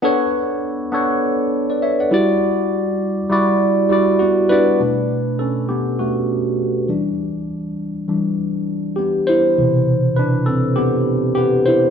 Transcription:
0.02 B3 D4 A4 C#5
0.92 B3 D4 A4 C#5
1.70 B4 D5
1.82 C#5 E5
2.00 D5 F#5
2.11 G3 E4 F#4 D5
3.30 G3 E4 F#4 D5
3.89 G3 E4 F#4 D5
4.19 B3 F#4
4.49 G3 D4 E4 F#4 B4 D5
4.80 B2 A3 D4
5.39 C#4 A4
5.69 B3 G4
5.99 A3 F#4
6.88 E3 G3 D4
8.08 E3 G3 D4
8.96 B3 G4
9.27 E4 C5
9.58 B2 C3 E3
10.16 D4 B4
10.46 C4 A4
10.76 B3 G4
11.35 B3 G4
11.66 E4 C5

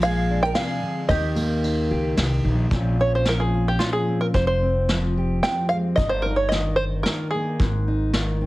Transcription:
Already playing: A#1 A#2 F3
0.01 G#3 G#4 F5, ride
0.30 D4
0.43 A#4 G5
0.55 C3 G#4 F5, snare, ride
0.82 D3
1.08 D#2 D#3 G4 D#5, kick, ride
1.35 A#3, ride
1.64 D#4, ride
1.91 C#2 G4
2.17 C2 G4, snare, ride
2.44 A#1 D#4
2.71 A#1 A#2 F3 C4 C#4 F4, kick, closed hi-hat
2.99 C#4 C#5
3.15 C5
3.25 F3 A#4, snare, closed hi-hat
3.40 G#4
3.54 F4
3.68 G4
3.79 F3 C#4 F4, snare, closed hi-hat
3.93 G#4
4.08 C4
4.21 A#4
4.34 F1 F2 C5, kick, closed hi-hat
4.47 C5
4.62 C4
4.88 F3, snare, closed hi-hat
5.17 G4
5.43 G5, snare, closed hi-hat
5.69 G#3 F5
5.96 G1 G2 D#5, kick, closed hi-hat
6.09 C5
6.22 D#4 A#4
6.36 C#5
6.49 D#5, snare, closed hi-hat
6.53 D#3
6.76 D#4 C5
7.03 D#3 A#4, snare, closed hi-hat
7.07 D#4
7.31 A#3 G#4
7.59 G#1 G#2, kick, closed hi-hat
7.88 D#4
8.13 D#3, snare, closed hi-hat
8.41 C4

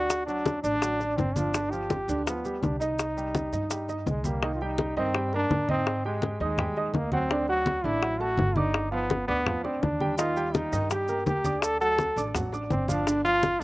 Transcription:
Already playing: D2 D4 F#4 D5
0.09 high bongo, high conga, maracas
0.26 F#3 D4 F#4, high conga, maracas
0.46 high bongo, high conga, maracas
0.63 A1 D4 D5, high bongo, high conga, maracas
0.82 F#3 F#4, high bongo, high conga, maracas
1.00 D4 D5, high bongo, high conga, maracas
1.17 G1 C4, high bongo, low bongo, high conga, maracas
1.35 F3 D4 F4, high bongo, high conga, maracas
1.54 D3 D4, high bongo, high conga, maracas
1.71 F3 F4 G4, high conga, maracas
1.90 high bongo, high conga, maracas
2.08 D2 D3 D4, high bongo, high conga, maracas
2.26 F3 B3 F4, high bongo, high conga, maracas
2.45 G3 G4, high bongo, high conga, maracas
2.62 C2 D4, high bongo, low bongo, high conga, maracas
2.80 D#4 D#5, high bongo, high conga, maracas
2.99 high bongo, high conga, maracas
3.17 G3 G4, high conga, maracas
3.35 high bongo, high conga, maracas
3.53 G2 D#4 D#5, high bongo, high conga, maracas
3.70 G3 G4, high bongo, high conga, maracas
3.88 D#4 D#5, high bongo, high conga, maracas
4.06 C2 G#3, high bongo, low bongo, high conga, maracas
4.24 G3 A#3 G4, high bongo, high conga, maracas
4.43 D#3 D#4 D#5, high bongo, high conga
4.55 F4
4.61 G3 D#4 G4 G5, high conga
4.78 high bongo, high conga
4.97 G2 D#3 C4 D#4 D#5, high bongo, high conga
5.15 G3 G4 G5, high bongo, high conga
5.33 A#3 D4 A#4 A#5, high bongo, high conga
5.50 G#2, high bongo, low bongo, high conga
5.69 C4 D#4 D#5 D#6, high bongo, high conga
5.87 high bongo, high conga
6.05 G#3 G4 G5, high conga
6.22 high bongo, high conga
6.40 D#2 G#3 D#4 D#5 D#6, high bongo, high conga
6.58 G3 G4 G5, high bongo, high conga, low conga
6.76 D#4 D#5 D#6, high bongo, high conga
6.94 D2 A#3, high bongo, low bongo, high conga
7.12 F#3 C4 F#4 F#5, high bongo, high conga
7.29 D3 D4 D5, high bongo, high conga
7.48 F#3 F#4 F#5, high conga
7.66 high bongo, high conga
7.84 A1 D3 D4 E4 D5, high bongo, high conga
8.02 F#3 F#4 F#5, high bongo, high conga
8.20 A3 F#4 A4 A5, high bongo, high conga
8.37 G1, high bongo, low bongo, high conga
8.56 D3 D#4 D5 D6, high bongo, high conga
8.74 high bongo
8.91 F3 B3 F4 F5, high conga
9.10 high bongo, high conga
9.28 D2 B3 D4 D5 D6, high bongo, high conga
9.46 F3 F4 F5, high bongo, high conga, low conga
9.64 C4 D4 D5 D6, high bongo, high conga
9.82 D#2 D4, high bongo, low bongo, high conga
10.00 G3 G4 G5, high bongo, high conga
10.18 D#3 D#4 F4 D#5, high bongo, high conga, maracas
10.36 G3 G4 G5, high conga, maracas
10.54 D#4, high bongo, high conga, maracas
10.72 G2 D#3 D#4 D#5, high bongo, high conga, maracas
10.90 G3 G4 G5, high bongo, high conga, maracas
11.08 A#3 A#4 A#5, high bongo, high conga, maracas
11.26 D2 G4, high bongo, low bongo, high conga, maracas
11.44 D4 D5 D6, high bongo, high conga, maracas
11.62 A4, high bongo, high conga, maracas
11.80 F#3 F#4 A4 F#5, high conga, maracas
11.98 high bongo, high conga, maracas
12.16 A1 D4 D5 D6, high bongo, high conga, maracas
12.35 F#3 F#4 F#5, high bongo, high conga, low conga, maracas
12.52 D4 D5 D6, high bongo, high conga, maracas
12.70 G1 C4, high bongo, low bongo, high conga, maracas
12.88 F3 D4 F4 F5, high bongo, high conga, maracas
13.06 D3 D4 D5, high bongo, high conga, maracas
13.24 F3 F4 F5, high conga, maracas
13.43 high bongo, high conga, maracas
13.60 D3 D4

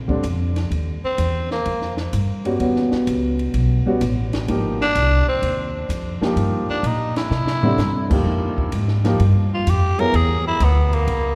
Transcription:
Already playing: A#1
0.08 D3 G3 C4 D4, kick
0.23 F2, hi-hat pedal, ride
0.56 snare, ride
0.71 D#2, ride
1.04 C4, muted upright bass stroke
1.18 E2, hi-hat pedal, ride
1.51 A#3, snare
1.65 F2, ride
1.82 snare
1.97 snare
2.13 G2, hi-hat pedal, ride
2.45 G3 B3 C#4 F#4, ride
2.60 D#2 G3 B3 C#4 F#4, ride
2.76 snare
2.92 muted upright bass stroke, snare
3.07 C#2, hi-hat pedal, ride
3.39 ride
3.54 B1, ride
3.86 G3 B3 C#4 F#4, muted upright bass stroke
4.01 A1, hi-hat pedal, ride
4.33 snare, ride
4.48 G#1 F3 A#3 D#4 G4, ride
4.81 D4, snare
4.95 C2, hi-hat pedal, ride
5.27 C4, muted upright bass stroke
5.42 D#2, ride
5.89 F2, hi-hat pedal, ride
6.21 F3 A#3 D#4 G4, muted upright bass stroke, snare
6.36 G2, ride
6.69 D4, muted upright bass stroke
6.83 A#2 D#4, hi-hat pedal, ride
7.16 E4, snare, ride
7.31 C3, snare
7.47 snare
7.63 D3 G3 C4 E4, floor tom
7.78 G2, snare, hi-hat pedal
8.10 F3 A#3 D#4 G4, kick, crash
8.25 F2
8.58 kick
8.72 G#2, hi-hat pedal, ride
8.88 snare
9.04 F3 A#3 D#4 G4, snare, ride
9.20 G2, ride
9.54 F4
9.67 F2 G4, hi-hat pedal, ride
9.99 F#3 B3 E4 G#4 A#4, ride
10.14 E2 G#4, ride
10.47 E4
10.60 D2 B3, hi-hat pedal, ride
10.93 A#3, ride
11.07 C#2, ride

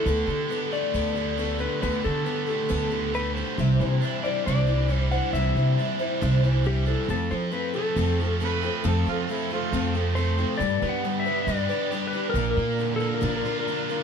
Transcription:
Already playing: A3 D4 A4
0.06 D2 D3 B3 D4 G4 A4
0.26 D3 D4 G4 A4
0.50 B3 D4 G4 A4
0.71 A3 G4 A4 D5
0.75 D4
0.94 D2 D3 B3 D4 G4 A4
1.14 D3 D4 G4 A4
1.37 A3 B3 D4 G4 A4
1.59 B3 D4 G4 A4 B4
1.82 D2 D3 B3 D4 G4 A4 B4
2.03 D3 G4 A4
2.07 D4
2.26 B3 D4 G4 A4
2.47 A3 D4 G4 A4
2.69 D2 D3 B3 D4 G4 A4
2.91 D3 D4 G4 A4
3.14 A3 B3 D4 G4 A4 B4
3.35 B3 D4 G4 A4 C5
3.58 C2 C3 E3 G3 D4 E4 C5
3.79 C3 E3 G3 D4 E4 C5
4.02 G3 D4 E4 C5
4.23 G3 D4 E4 C5 D5
4.27 G3
4.46 C2 C3 E3 G3 D4 E4 C5 D5
4.67 E3 G3 D4 E4 C5
4.88 G3 D4 E4 C5
4.97 C5
5.12 G3 D4 E4 C5 F#5
5.33 C2 C3 E3 G3 D4 E4 C5 E5
5.55 C3 E3 D4 E4 C5
5.60 G3
5.79 G3 D4 E4 C5
5.99 G3 D4 E4 C5
6.22 C2 C3 E3 G3 D4 E4 C5
6.43 E3 G3 D4 E4 C5
6.64 G3 D4 E4 G4 C5
6.86 G3 D4 E4 A4 C5
7.08 F2 F3 A3 C4 F4 A4
7.31 F3 C4 F4 A4 C5
7.51 A3 C4 F4 A4 B4
7.73 A3 C4 F4 A4
7.96 F2 F3 A3 C4 F4 A4
8.19 F3 C4 F4 A4
8.40 A3 C4 F4 A4
8.44 B4
8.63 C4 F4 A4
8.84 F2 F3 A3 C4 F4 A4
9.06 F3 C4 F4 A4
9.29 A3 C4 E4 F4 A4
9.50 A3 C4 F4 A4
9.72 F2 F3 A3 C4 F4 A4
9.94 F3 C4 F4 A4
10.15 A3 C4 F4 A4 C5
10.38 C4 F4 A4
10.57 G2 G3 D4 G4 B4 D5
10.62 G4 B4
10.82 G3 B3 D4 G4 B4
10.89 F#5
11.04 G3 D4 G4 B4
11.20 E5
11.26 B3 D4 G4 B4
11.42 D5
11.47 G2 G3 D4 G4 B4
11.69 D4 G4 B4
11.92 G3 D4 G4 B4
12.07 B4
12.13 G3 D4 G4 B4
12.30 A#4
12.34 A#1 A#2 F3 A#3 D4 F4 A#4
12.51 A#4
12.57 A#2 A#3 D4 F4 A#4
12.79 D3 A#3 D4 F4 A#4
12.96 A4 A#4
13.01 A#3 D4 F4
13.15 A#4
13.21 A#1 A#2 F3 A#3 D4 F4 A#4
13.37 A#4
13.45 A#3 D4 F4 A#4
13.60 A#4
13.68 A#3 D4 F4 A#4
13.89 D3 A#3 D4 F4 A#4

